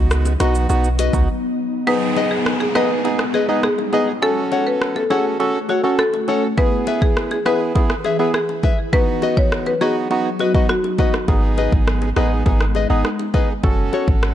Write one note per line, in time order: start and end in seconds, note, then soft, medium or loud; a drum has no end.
0.00 0.36 C#2 medium
0.00 1.85 F#3 medium
0.00 0.33 B3 loud
0.00 1.85 B3 medium
0.00 0.33 D#4 medium
0.00 1.85 D#4 medium
0.00 0.33 F#4 loud
0.11 cross-stick loud
0.11 shaker medium
0.25 high bongo medium
0.25 shaker medium
0.40 0.67 B1 loud
0.40 0.67 B3 medium
0.40 0.67 D#4 medium
0.40 0.54 F#4 medium
0.40 0.67 F#4 medium
0.40 0.54 B4 medium
0.40 0.55 D#5 medium
0.40 cross-stick medium
0.40 closed hi-hat medium
0.40 high bongo medium
0.40 low bongo medium
0.40 shaker soft
0.55 shaker medium
0.69 1.10 B1 loud
0.69 0.88 B3 medium
0.69 0.89 D#4 medium
0.69 0.89 F#4 loud
0.69 high bongo medium
0.69 shaker medium
0.84 shaker soft
0.99 1.13 F#4 medium
0.99 1.13 B4 medium
0.99 1.13 D#5 loud
0.99 closed hi-hat medium
0.99 high bongo medium
0.99 shaker soft
1.13 1.27 C#2 medium
1.13 1.28 B3 medium
1.13 1.28 D#4 medium
1.13 1.29 F#4 medium
1.13 kick loud
1.13 shaker medium
1.87 4.20 G#3 medium
1.87 2.68 B3 medium
1.87 4.20 B3 medium
1.87 2.68 D#4 medium
1.87 4.20 D#4 medium
1.87 2.69 G#4 loud
1.87 1.98 B4 loud
1.87 high bongo medium
1.87 downlifter medium
2.16 2.30 G#4 medium
2.16 2.31 B4 medium
2.16 2.31 D#5 medium
2.16 high bongo medium
2.31 2.42 G#4 medium
2.46 cross-stick loud
2.60 2.71 G#4 medium
2.60 high bongo medium
2.75 3.02 B3 medium
2.75 3.03 D#4 medium
2.75 2.89 G#4 medium
2.75 3.03 G#4 medium
2.75 2.86 B4 medium
2.75 2.90 B4 loud
2.75 2.90 D#5 loud
2.75 cross-stick medium
2.75 high bongo soft
2.75 low bongo medium
3.04 3.24 B3 medium
3.04 3.24 D#4 medium
3.04 3.24 G#4 loud
3.04 high bongo medium
3.19 cross-stick medium
3.34 3.48 G#4 medium
3.34 3.45 G#4 medium
3.34 3.48 B4 medium
3.34 3.48 D#5 medium
3.34 high bongo medium
3.49 3.68 B3 medium
3.49 3.68 D#4 medium
3.49 3.68 G#4 medium
3.49 3.60 G#4 soft
3.49 3.60 B4 medium
3.49 3.60 D#5 medium
3.63 4.05 G#4 medium
3.63 cross-stick medium
3.78 high bongo medium
3.93 4.12 B3 medium
3.93 4.12 D#4 medium
3.93 4.07 G#4 medium
3.93 4.12 G#4 medium
3.93 4.07 B4 medium
3.93 4.08 D#5 medium
3.93 low bongo medium
4.22 6.55 A3 medium
4.22 5.03 C#4 medium
4.22 6.55 C#4 medium
4.22 5.04 F#4 medium
4.22 6.55 F#4 medium
4.22 4.33 A4 loud
4.22 5.04 A4 loud
4.22 high bongo medium
4.52 4.66 A4 medium
4.52 4.66 C#5 medium
4.52 4.66 F#5 medium
4.52 high bongo medium
4.67 4.77 B4 medium
4.82 cross-stick medium
4.96 5.07 A4 medium
4.96 muted nylon-string guitar stroke soft
4.96 high bongo medium
5.10 5.38 C#4 medium
5.10 5.38 F#4 medium
5.10 5.21 G#4 medium
5.10 5.25 A4 medium
5.10 5.38 A4 medium
5.10 5.25 C#5 medium
5.10 5.25 F#5 medium
5.10 high bongo soft
5.10 low bongo medium
5.40 5.59 C#4 medium
5.40 5.59 F#4 medium
5.40 5.59 A4 loud
5.40 high bongo medium
5.69 5.80 F#4 medium
5.69 5.83 A4 medium
5.69 5.83 C#5 medium
5.69 5.83 F#5 medium
5.69 high bongo medium
5.83 6.03 C#4 medium
5.83 6.03 F#4 medium
5.83 6.03 A4 medium
5.83 5.96 A4 medium
5.83 5.95 C#5 medium
5.83 5.95 F#5 medium
5.99 6.40 A4 medium
5.99 cross-stick medium
6.14 high bongo medium
6.28 6.47 C#4 medium
6.28 6.47 F#4 medium
6.28 6.42 A4 medium
6.28 6.47 A4 medium
6.28 6.42 C#5 medium
6.28 6.43 F#5 medium
6.28 low bongo medium
6.57 8.91 E3 medium
6.57 7.39 B3 medium
6.57 7.39 E4 medium
6.57 8.91 E4 medium
6.57 8.91 G#4 medium
6.57 7.39 G#4 loud
6.57 6.68 B4 loud
6.57 8.91 B4 medium
6.57 kick loud
6.57 high bongo medium
6.87 7.01 G#4 medium
6.87 7.01 B4 medium
6.87 7.02 E5 medium
6.87 high bongo medium
7.02 7.13 G#4 medium
7.02 kick medium
7.17 cross-stick medium
7.31 7.42 G#4 medium
7.31 high bongo medium
7.45 7.73 B3 medium
7.45 7.73 E4 medium
7.45 7.60 G#4 medium
7.45 7.73 G#4 medium
7.45 7.60 B4 medium
7.45 7.57 B4 medium
7.45 7.60 E5 loud
7.45 cross-stick medium
7.45 high bongo soft
7.45 low bongo medium
7.75 7.94 B3 medium
7.75 7.94 E4 medium
7.75 7.95 G#4 loud
7.75 kick loud
7.75 high bongo medium
7.90 cross-stick medium
8.04 8.19 G#4 medium
8.04 8.16 G#4 medium
8.04 8.19 B4 medium
8.04 8.18 E5 medium
8.04 high bongo medium
8.19 8.38 B3 medium
8.19 8.39 E4 medium
8.19 8.39 G#4 medium
8.19 8.31 G#4 medium
8.19 8.31 B4 medium
8.19 8.30 E5 medium
8.34 8.76 G#4 medium
8.34 cross-stick medium
8.49 high bongo medium
8.63 8.78 G#4 medium
8.63 8.78 B4 medium
8.63 8.78 E5 medium
8.63 kick medium
8.63 low bongo medium
8.93 11.26 F#3 medium
8.93 9.74 B3 medium
8.93 13.60 B3 medium
8.93 9.74 D#4 medium
8.93 13.60 D#4 medium
8.93 9.74 F#4 medium
8.93 9.04 B4 medium
8.93 kick loud
8.93 high bongo medium
9.22 9.36 F#4 medium
9.22 9.37 B4 medium
9.22 9.37 D#5 medium
9.22 high bongo medium
9.37 9.48 C#5 medium
9.37 kick medium
9.52 cross-stick medium
9.66 9.77 B4 medium
9.66 muted nylon-string guitar stroke soft
9.66 high bongo medium
9.81 10.08 B3 medium
9.81 10.08 D#4 medium
9.81 9.95 F#4 medium
9.81 10.09 F#4 medium
9.81 9.92 G#4 medium
9.81 9.95 B4 medium
9.81 9.96 D#5 loud
9.81 high bongo soft
9.81 low bongo medium
10.11 10.30 B3 medium
10.11 10.30 D#4 medium
10.11 10.30 F#4 loud
10.11 high bongo medium
10.39 10.54 F#4 medium
10.39 10.51 F#4 medium
10.39 10.54 B4 medium
10.39 10.53 D#5 medium
10.39 high bongo medium
10.55 10.74 B3 medium
10.55 10.74 D#4 medium
10.55 10.74 F#4 medium
10.55 10.66 F#4 medium
10.55 10.66 B4 medium
10.55 10.66 D#5 medium
10.55 kick medium
10.69 11.11 F#4 medium
10.69 cross-stick medium
10.84 high bongo medium
10.98 11.18 B3 medium
10.98 11.18 D#4 medium
10.98 11.13 F#4 medium
10.98 11.18 F#4 medium
10.98 11.13 B4 medium
10.98 11.13 D#5 medium
10.98 kick medium
10.98 low bongo medium
11.14 cross-stick medium
11.28 11.69 G#1 loud
11.28 13.61 G#3 medium
11.28 12.09 B3 medium
11.28 12.10 D#4 medium
11.28 12.10 G#4 loud
11.28 kick loud
11.28 high bongo medium
11.57 11.72 G#4 medium
11.57 11.72 B4 medium
11.57 11.72 D#5 medium
11.57 high bongo medium
11.72 12.13 G#1 medium
11.72 kick medium
11.88 cross-stick loud
12.02 high bongo medium
12.16 12.43 A1 medium
12.16 12.44 B3 medium
12.16 12.44 D#4 medium
12.16 12.30 G#4 medium
12.16 12.44 G#4 medium
12.16 12.31 B4 loud
12.16 12.31 D#5 medium
12.16 cross-stick medium
12.16 high bongo soft
12.16 low bongo medium
12.46 12.86 G#1 loud
12.46 12.65 B3 medium
12.46 12.65 D#4 medium
12.46 12.65 G#4 loud
12.46 kick medium
12.46 high bongo medium
12.61 cross-stick medium
12.75 12.89 G#4 medium
12.75 12.89 B4 medium
12.75 12.89 D#5 medium
12.75 high bongo medium
12.90 13.03 G#1 medium
12.90 13.09 B3 medium
12.90 13.09 D#4 medium
12.90 13.09 G#4 medium
12.90 13.01 G#4 medium
12.90 13.01 B4 medium
12.90 13.01 D#5 medium
13.05 cross-stick medium
13.19 high bongo medium
13.34 13.53 B3 medium
13.34 13.53 D#4 medium
13.34 13.48 G#4 medium
13.34 13.53 G#4 medium
13.34 13.48 B4 medium
13.34 13.49 D#5 medium
13.34 kick medium
13.34 low bongo medium
13.63 13.90 F#1 loud
13.63 14.34 A3 medium
13.63 14.34 C#4 medium
13.63 14.34 F#4 medium
13.63 14.34 A4 loud
13.63 kick loud
13.63 high bongo medium
13.93 14.07 F#4 medium
13.93 14.07 A4 medium
13.93 14.07 C#5 medium
13.93 high bongo medium
14.08 14.34 G#1 medium
14.08 kick medium
14.23 cross-stick loud